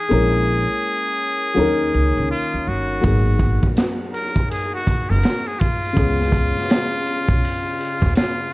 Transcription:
Already playing: muted trumpet G#4
0.09 upright bass A#1, upright piano G#3 A#3 C#4 E4
0.13 upright piano A#4
1.54 upright bass D#2, upright piano F#3 A#3 C#4 D#4
1.59 upright piano D#3 A#4
1.94 upright bass C#2
2.17 upright bass C#2
2.31 muted trumpet F4
2.54 upright bass D#2
2.67 upright bass G1, muted trumpet F#4
3.01 upright bass G#1, upright piano F#3 A#3 B3 D#4, kick, ride
3.06 upright piano G#4
3.39 kick, ride
3.63 kick, ride
3.77 snare, hi-hat pedal, ride
4.14 muted trumpet A#4, ride
4.36 kick
4.51 muted trumpet G#4, ride
4.74 muted trumpet F#4
4.87 kick, ride
5.10 upright bass F#1, muted trumpet A#4, snare, ride
5.23 snare, hi-hat pedal, ride
5.47 muted trumpet G#4
5.59 muted trumpet F4, kick, ride
5.85 ride
5.93 upright bass C#2, upright piano C#3 G#3 B3 C#4, kick, ride
5.98 upright piano G#4
6.21 snare
6.32 kick, ride
6.58 snare
6.70 snare, hi-hat pedal, ride
7.07 ride
7.29 upright bass B1, kick
7.45 ride
7.80 ride
8.02 upright bass D#2, kick, snare, ride
8.15 muted trumpet F4, snare, hi-hat pedal, ride

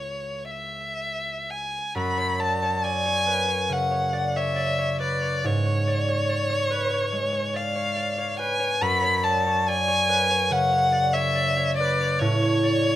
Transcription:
Already playing: harp C#2 C#4 E4 G#4, violin C#5
0.50 violin E5
1.50 violin G#5
1.95 harp F#2, violin B5
2.18 harp C#5
2.39 harp D5, violin A5
2.63 harp C#5
2.84 harp D5, violin G#5
3.05 harp C#5
3.27 harp B4
3.48 harp C#5
3.69 harp C#3, violin F#5
3.91 harp C#5
4.13 harp D5
4.36 harp C#5, violin E5
4.56 harp D5
4.78 harp C#5
5.00 harp B4, violin D5
5.21 harp C#5
5.44 harp G#2, violin C#5
5.66 harp C#5
5.87 harp D5
6.09 harp C#5
6.29 harp D5
6.50 harp C#5
6.71 harp B4
6.90 harp C#5
7.12 harp G#3
7.33 harp C#5
7.54 harp D5, violin F5
7.75 harp C#5
7.96 harp D5
8.18 harp C#5
8.39 harp B4, violin G#5
8.59 harp C#5
8.81 harp F#2, violin B5
9.02 harp C#5
9.23 harp D5, violin A5
9.47 harp C#5
9.68 harp D5, violin G#5
9.88 harp C#5
10.09 harp B4
10.30 harp C#5
10.50 harp C#3, violin F#5
10.73 harp C#5
10.92 harp D5
11.13 harp C#5, violin E5
11.35 harp D5
11.57 harp C#5
11.77 harp B4, violin D5
12.01 harp C#5
12.19 harp A2, violin C#5
12.42 harp C#5
12.63 harp D5
12.83 harp C#5

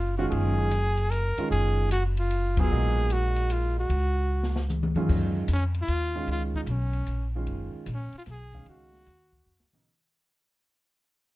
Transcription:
Already playing: upright bass F#1, trumpet F4
0.17 grand piano D#3 G#3 C#4 F4, trumpet F#4
0.29 upright bass F#1, trumpet F#4 G#4, ride
0.71 hi-hat pedal, ride
0.97 ride
1.11 trumpet A#4, hi-hat pedal, ride
1.37 grand piano D#3 G#3 C#4 F4, muted upright bass stroke, ride
1.51 upright bass F#1, trumpet G#4, ride
1.91 trumpet F#4, hi-hat pedal, ride
2.17 trumpet F4, ride
2.31 ride
2.57 grand piano F#3 B3 F4 G#4, trumpet G#4, kick, ride
2.71 upright bass A#1, grand piano G#3 A#3 D#4 F#4
3.10 trumpet F#4, hi-hat pedal, ride
3.36 ride
3.50 trumpet F4, hi-hat pedal, ride
3.79 trumpet F#4
3.89 upright bass C#2, ride
4.43 snare
4.56 snare
4.69 hi-hat pedal, mid tom
4.83 mid tom
4.95 grand piano F#2 D#3 G#3 C#4 F4, upright bass G2, mid tom
5.09 upright bass F#2, kick, crash
5.48 upright bass F2, hi-hat pedal, ride
5.53 trumpet C#4
5.74 ride
5.82 trumpet F4
5.88 upright bass D#2, hi-hat pedal, ride
6.16 grand piano D#3 G#3 C#4 F4
6.27 upright bass C#2, ride
6.31 trumpet F4
6.54 trumpet D#4, kick
6.66 upright bass B1, hi-hat pedal, ride
6.70 trumpet C#4
6.93 ride
7.06 upright bass A#1, hi-hat pedal, ride
7.35 grand piano D#3 G#3 C#4 F4
7.47 upright bass F#1, ride
7.74 muted upright bass stroke
7.86 upright bass A#1, hi-hat pedal, ride
7.94 trumpet C#4
8.13 muted upright bass stroke, ride
8.18 trumpet F4
8.26 upright bass B1, snare, hi-hat pedal, ride
8.31 trumpet G#4
8.52 grand piano D#3 G#3 C#4 F5, kick, ride
8.66 upright bass C#2, trumpet F#4, ride
8.93 snare
9.06 upright bass D#2, hi-hat pedal, ride
9.33 kick
9.46 upright bass F2
9.59 upright bass C#2, snare
9.73 upright bass A#1, grand piano C#3 F#3 B3 D#4, mid tom

